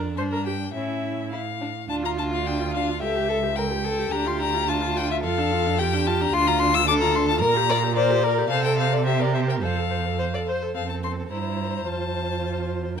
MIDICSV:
0, 0, Header, 1, 5, 480
1, 0, Start_track
1, 0, Key_signature, -1, "minor"
1, 0, Tempo, 567108
1, 631, Time_signature, 2, 2, 24, 8
1, 2553, Tempo, 549451
1, 5448, Key_signature, -1, "major"
1, 7353, Tempo, 558659
1, 11210, End_track
2, 0, Start_track
2, 0, Title_t, "Violin"
2, 0, Program_c, 0, 40
2, 145, Note_on_c, 0, 84, 67
2, 194, Note_off_c, 0, 84, 0
2, 268, Note_on_c, 0, 82, 67
2, 386, Note_off_c, 0, 82, 0
2, 393, Note_on_c, 0, 79, 64
2, 622, Note_off_c, 0, 79, 0
2, 627, Note_on_c, 0, 76, 54
2, 1104, Note_off_c, 0, 76, 0
2, 1116, Note_on_c, 0, 77, 63
2, 1568, Note_off_c, 0, 77, 0
2, 1601, Note_on_c, 0, 81, 92
2, 1649, Note_off_c, 0, 81, 0
2, 1737, Note_on_c, 0, 82, 77
2, 1782, Note_off_c, 0, 82, 0
2, 1848, Note_on_c, 0, 81, 82
2, 1894, Note_off_c, 0, 81, 0
2, 1977, Note_on_c, 0, 77, 74
2, 2087, Note_on_c, 0, 79, 80
2, 2099, Note_off_c, 0, 77, 0
2, 2314, Note_off_c, 0, 79, 0
2, 2319, Note_on_c, 0, 77, 81
2, 2549, Note_off_c, 0, 77, 0
2, 2554, Note_on_c, 0, 76, 85
2, 3026, Note_on_c, 0, 79, 84
2, 3039, Note_off_c, 0, 76, 0
2, 3514, Note_on_c, 0, 82, 95
2, 3527, Note_off_c, 0, 79, 0
2, 3650, Note_on_c, 0, 84, 78
2, 3663, Note_off_c, 0, 82, 0
2, 3761, Note_off_c, 0, 84, 0
2, 3766, Note_on_c, 0, 82, 101
2, 4011, Note_on_c, 0, 81, 89
2, 4024, Note_off_c, 0, 82, 0
2, 4257, Note_on_c, 0, 79, 94
2, 4270, Note_off_c, 0, 81, 0
2, 4374, Note_off_c, 0, 79, 0
2, 4384, Note_on_c, 0, 76, 85
2, 4429, Note_off_c, 0, 76, 0
2, 4495, Note_on_c, 0, 77, 97
2, 4975, Note_on_c, 0, 79, 101
2, 4988, Note_off_c, 0, 77, 0
2, 5219, Note_on_c, 0, 81, 90
2, 5232, Note_off_c, 0, 79, 0
2, 5350, Note_on_c, 0, 82, 104
2, 5363, Note_off_c, 0, 81, 0
2, 5452, Note_on_c, 0, 84, 121
2, 5465, Note_off_c, 0, 82, 0
2, 5573, Note_on_c, 0, 82, 106
2, 5586, Note_off_c, 0, 84, 0
2, 5677, Note_on_c, 0, 84, 121
2, 5690, Note_off_c, 0, 82, 0
2, 5812, Note_on_c, 0, 88, 116
2, 5825, Note_off_c, 0, 84, 0
2, 5922, Note_off_c, 0, 88, 0
2, 5928, Note_on_c, 0, 86, 118
2, 5974, Note_off_c, 0, 86, 0
2, 6048, Note_on_c, 0, 82, 101
2, 6166, Note_on_c, 0, 84, 89
2, 6179, Note_off_c, 0, 82, 0
2, 6275, Note_off_c, 0, 84, 0
2, 6281, Note_on_c, 0, 81, 104
2, 6381, Note_off_c, 0, 81, 0
2, 6386, Note_on_c, 0, 82, 114
2, 6859, Note_off_c, 0, 82, 0
2, 6868, Note_on_c, 0, 74, 94
2, 7333, Note_off_c, 0, 74, 0
2, 7338, Note_on_c, 0, 77, 99
2, 7461, Note_off_c, 0, 77, 0
2, 7470, Note_on_c, 0, 79, 83
2, 7582, Note_off_c, 0, 79, 0
2, 7587, Note_on_c, 0, 77, 94
2, 7715, Note_on_c, 0, 74, 90
2, 7728, Note_off_c, 0, 77, 0
2, 7819, Note_off_c, 0, 74, 0
2, 7824, Note_on_c, 0, 76, 91
2, 7955, Note_on_c, 0, 74, 81
2, 7968, Note_off_c, 0, 76, 0
2, 8063, Note_off_c, 0, 74, 0
2, 8068, Note_on_c, 0, 76, 74
2, 8117, Note_off_c, 0, 76, 0
2, 8198, Note_on_c, 0, 79, 72
2, 8245, Note_off_c, 0, 79, 0
2, 8308, Note_on_c, 0, 77, 75
2, 9027, Note_off_c, 0, 77, 0
2, 9277, Note_on_c, 0, 77, 74
2, 9393, Note_off_c, 0, 77, 0
2, 9400, Note_on_c, 0, 81, 64
2, 9450, Note_off_c, 0, 81, 0
2, 9518, Note_on_c, 0, 84, 78
2, 9587, Note_off_c, 0, 84, 0
2, 9756, Note_on_c, 0, 82, 70
2, 10242, Note_on_c, 0, 81, 74
2, 10254, Note_off_c, 0, 82, 0
2, 10956, Note_off_c, 0, 81, 0
2, 11210, End_track
3, 0, Start_track
3, 0, Title_t, "Violin"
3, 0, Program_c, 1, 40
3, 0, Note_on_c, 1, 62, 62
3, 142, Note_off_c, 1, 62, 0
3, 158, Note_on_c, 1, 62, 55
3, 625, Note_off_c, 1, 62, 0
3, 637, Note_on_c, 1, 61, 46
3, 1062, Note_off_c, 1, 61, 0
3, 1124, Note_on_c, 1, 64, 49
3, 1192, Note_off_c, 1, 64, 0
3, 1364, Note_on_c, 1, 62, 46
3, 1432, Note_off_c, 1, 62, 0
3, 1607, Note_on_c, 1, 65, 71
3, 2549, Note_on_c, 1, 67, 64
3, 2562, Note_off_c, 1, 65, 0
3, 2784, Note_off_c, 1, 67, 0
3, 2789, Note_on_c, 1, 69, 63
3, 2859, Note_off_c, 1, 69, 0
3, 3041, Note_on_c, 1, 70, 66
3, 3111, Note_off_c, 1, 70, 0
3, 3276, Note_on_c, 1, 69, 70
3, 3514, Note_on_c, 1, 67, 77
3, 3527, Note_off_c, 1, 69, 0
3, 4011, Note_on_c, 1, 65, 73
3, 4024, Note_off_c, 1, 67, 0
3, 4484, Note_off_c, 1, 65, 0
3, 4489, Note_on_c, 1, 69, 83
3, 4981, Note_on_c, 1, 67, 78
3, 4994, Note_off_c, 1, 69, 0
3, 5446, Note_on_c, 1, 65, 88
3, 5460, Note_off_c, 1, 67, 0
3, 5920, Note_off_c, 1, 65, 0
3, 5927, Note_on_c, 1, 69, 90
3, 6390, Note_off_c, 1, 69, 0
3, 6395, Note_on_c, 1, 70, 87
3, 6465, Note_off_c, 1, 70, 0
3, 6640, Note_on_c, 1, 74, 93
3, 6710, Note_off_c, 1, 74, 0
3, 6875, Note_on_c, 1, 72, 87
3, 7110, Note_on_c, 1, 70, 80
3, 7123, Note_off_c, 1, 72, 0
3, 7339, Note_off_c, 1, 70, 0
3, 7344, Note_on_c, 1, 69, 84
3, 7816, Note_off_c, 1, 69, 0
3, 7828, Note_on_c, 1, 67, 70
3, 8312, Note_on_c, 1, 69, 62
3, 8325, Note_off_c, 1, 67, 0
3, 8751, Note_off_c, 1, 69, 0
3, 8794, Note_on_c, 1, 72, 64
3, 8844, Note_off_c, 1, 72, 0
3, 8925, Note_on_c, 1, 74, 60
3, 8973, Note_off_c, 1, 74, 0
3, 9036, Note_on_c, 1, 72, 57
3, 9278, Note_off_c, 1, 72, 0
3, 9293, Note_on_c, 1, 69, 48
3, 9736, Note_off_c, 1, 69, 0
3, 9768, Note_on_c, 1, 72, 53
3, 11160, Note_off_c, 1, 72, 0
3, 11210, End_track
4, 0, Start_track
4, 0, Title_t, "Viola"
4, 0, Program_c, 2, 41
4, 151, Note_on_c, 2, 72, 56
4, 198, Note_off_c, 2, 72, 0
4, 269, Note_on_c, 2, 70, 53
4, 317, Note_off_c, 2, 70, 0
4, 391, Note_on_c, 2, 67, 55
4, 458, Note_off_c, 2, 67, 0
4, 633, Note_on_c, 2, 64, 47
4, 1107, Note_off_c, 2, 64, 0
4, 1600, Note_on_c, 2, 62, 58
4, 1720, Note_on_c, 2, 65, 50
4, 1733, Note_off_c, 2, 62, 0
4, 1835, Note_on_c, 2, 62, 53
4, 1848, Note_off_c, 2, 65, 0
4, 1959, Note_on_c, 2, 65, 56
4, 1972, Note_off_c, 2, 62, 0
4, 2073, Note_off_c, 2, 65, 0
4, 2078, Note_on_c, 2, 62, 47
4, 2199, Note_on_c, 2, 65, 48
4, 2212, Note_off_c, 2, 62, 0
4, 2320, Note_on_c, 2, 62, 52
4, 2332, Note_off_c, 2, 65, 0
4, 2434, Note_on_c, 2, 65, 48
4, 2446, Note_off_c, 2, 62, 0
4, 2552, Note_off_c, 2, 65, 0
4, 2558, Note_on_c, 2, 69, 59
4, 2676, Note_on_c, 2, 67, 54
4, 2689, Note_off_c, 2, 69, 0
4, 2789, Note_on_c, 2, 69, 56
4, 2802, Note_off_c, 2, 67, 0
4, 2915, Note_on_c, 2, 67, 53
4, 2928, Note_off_c, 2, 69, 0
4, 3032, Note_off_c, 2, 67, 0
4, 3037, Note_on_c, 2, 69, 51
4, 3158, Note_on_c, 2, 67, 53
4, 3171, Note_off_c, 2, 69, 0
4, 3279, Note_on_c, 2, 69, 53
4, 3292, Note_off_c, 2, 67, 0
4, 3396, Note_on_c, 2, 67, 49
4, 3409, Note_off_c, 2, 69, 0
4, 3508, Note_off_c, 2, 67, 0
4, 3513, Note_on_c, 2, 62, 61
4, 3636, Note_on_c, 2, 65, 54
4, 3649, Note_off_c, 2, 62, 0
4, 3759, Note_on_c, 2, 62, 57
4, 3772, Note_off_c, 2, 65, 0
4, 3882, Note_on_c, 2, 65, 59
4, 3895, Note_off_c, 2, 62, 0
4, 4000, Note_off_c, 2, 65, 0
4, 4005, Note_on_c, 2, 62, 59
4, 4121, Note_on_c, 2, 65, 56
4, 4134, Note_off_c, 2, 62, 0
4, 4249, Note_on_c, 2, 62, 61
4, 4262, Note_off_c, 2, 65, 0
4, 4372, Note_on_c, 2, 65, 56
4, 4385, Note_off_c, 2, 62, 0
4, 4492, Note_off_c, 2, 65, 0
4, 4497, Note_on_c, 2, 65, 68
4, 4618, Note_on_c, 2, 62, 59
4, 4631, Note_off_c, 2, 65, 0
4, 4739, Note_on_c, 2, 65, 61
4, 4753, Note_off_c, 2, 62, 0
4, 4862, Note_on_c, 2, 62, 63
4, 4875, Note_off_c, 2, 65, 0
4, 4973, Note_off_c, 2, 62, 0
4, 4979, Note_on_c, 2, 65, 60
4, 5102, Note_on_c, 2, 62, 66
4, 5115, Note_off_c, 2, 65, 0
4, 5220, Note_on_c, 2, 65, 70
4, 5233, Note_off_c, 2, 62, 0
4, 5340, Note_on_c, 2, 62, 63
4, 5353, Note_off_c, 2, 65, 0
4, 5453, Note_off_c, 2, 62, 0
4, 5462, Note_on_c, 2, 62, 74
4, 5575, Note_on_c, 2, 65, 65
4, 5588, Note_off_c, 2, 62, 0
4, 5690, Note_on_c, 2, 62, 71
4, 5703, Note_off_c, 2, 65, 0
4, 5807, Note_on_c, 2, 65, 72
4, 5820, Note_off_c, 2, 62, 0
4, 5920, Note_off_c, 2, 65, 0
4, 5925, Note_on_c, 2, 62, 68
4, 6047, Note_on_c, 2, 65, 68
4, 6060, Note_off_c, 2, 62, 0
4, 6169, Note_on_c, 2, 62, 67
4, 6182, Note_off_c, 2, 65, 0
4, 6290, Note_on_c, 2, 65, 61
4, 6303, Note_off_c, 2, 62, 0
4, 6404, Note_off_c, 2, 65, 0
4, 6411, Note_on_c, 2, 70, 75
4, 6528, Note_on_c, 2, 67, 67
4, 6541, Note_off_c, 2, 70, 0
4, 6645, Note_on_c, 2, 70, 66
4, 6658, Note_off_c, 2, 67, 0
4, 6760, Note_on_c, 2, 67, 68
4, 6773, Note_off_c, 2, 70, 0
4, 6869, Note_off_c, 2, 67, 0
4, 6875, Note_on_c, 2, 70, 68
4, 7000, Note_on_c, 2, 67, 65
4, 7013, Note_off_c, 2, 70, 0
4, 7118, Note_on_c, 2, 70, 72
4, 7131, Note_off_c, 2, 67, 0
4, 7239, Note_on_c, 2, 67, 64
4, 7252, Note_off_c, 2, 70, 0
4, 7350, Note_off_c, 2, 67, 0
4, 7355, Note_on_c, 2, 72, 70
4, 7479, Note_on_c, 2, 69, 62
4, 7492, Note_off_c, 2, 72, 0
4, 7596, Note_on_c, 2, 72, 65
4, 7609, Note_off_c, 2, 69, 0
4, 7709, Note_on_c, 2, 69, 62
4, 7722, Note_off_c, 2, 72, 0
4, 7820, Note_off_c, 2, 69, 0
4, 7826, Note_on_c, 2, 72, 54
4, 7943, Note_on_c, 2, 70, 52
4, 7956, Note_off_c, 2, 72, 0
4, 8063, Note_on_c, 2, 72, 54
4, 8076, Note_off_c, 2, 70, 0
4, 8184, Note_on_c, 2, 70, 48
4, 8196, Note_off_c, 2, 72, 0
4, 8301, Note_off_c, 2, 70, 0
4, 8306, Note_on_c, 2, 72, 59
4, 8427, Note_on_c, 2, 69, 51
4, 8440, Note_off_c, 2, 72, 0
4, 8552, Note_on_c, 2, 72, 48
4, 8565, Note_off_c, 2, 69, 0
4, 8677, Note_on_c, 2, 69, 50
4, 8690, Note_off_c, 2, 72, 0
4, 8796, Note_off_c, 2, 69, 0
4, 8801, Note_on_c, 2, 72, 45
4, 8922, Note_on_c, 2, 69, 46
4, 8935, Note_off_c, 2, 72, 0
4, 9053, Note_on_c, 2, 72, 47
4, 9066, Note_off_c, 2, 69, 0
4, 9171, Note_on_c, 2, 69, 45
4, 9184, Note_off_c, 2, 72, 0
4, 9287, Note_off_c, 2, 69, 0
4, 9292, Note_on_c, 2, 60, 51
4, 9735, Note_off_c, 2, 60, 0
4, 9771, Note_on_c, 2, 64, 50
4, 10213, Note_off_c, 2, 64, 0
4, 10242, Note_on_c, 2, 65, 54
4, 11158, Note_off_c, 2, 65, 0
4, 11210, End_track
5, 0, Start_track
5, 0, Title_t, "Cello"
5, 0, Program_c, 3, 42
5, 0, Note_on_c, 3, 41, 60
5, 151, Note_on_c, 3, 43, 56
5, 164, Note_off_c, 3, 41, 0
5, 627, Note_off_c, 3, 43, 0
5, 632, Note_on_c, 3, 45, 47
5, 1413, Note_off_c, 3, 45, 0
5, 1601, Note_on_c, 3, 38, 68
5, 2554, Note_on_c, 3, 37, 66
5, 2567, Note_off_c, 3, 38, 0
5, 3509, Note_off_c, 3, 37, 0
5, 3514, Note_on_c, 3, 38, 75
5, 4490, Note_on_c, 3, 41, 74
5, 4503, Note_off_c, 3, 38, 0
5, 5437, Note_off_c, 3, 41, 0
5, 5442, Note_on_c, 3, 38, 84
5, 6401, Note_on_c, 3, 46, 84
5, 6414, Note_off_c, 3, 38, 0
5, 7341, Note_off_c, 3, 46, 0
5, 7347, Note_on_c, 3, 48, 84
5, 8306, Note_on_c, 3, 41, 67
5, 8319, Note_off_c, 3, 48, 0
5, 9109, Note_off_c, 3, 41, 0
5, 9281, Note_on_c, 3, 41, 53
5, 9730, Note_off_c, 3, 41, 0
5, 9765, Note_on_c, 3, 43, 52
5, 10234, Note_off_c, 3, 43, 0
5, 10243, Note_on_c, 3, 41, 59
5, 11206, Note_off_c, 3, 41, 0
5, 11210, End_track
0, 0, End_of_file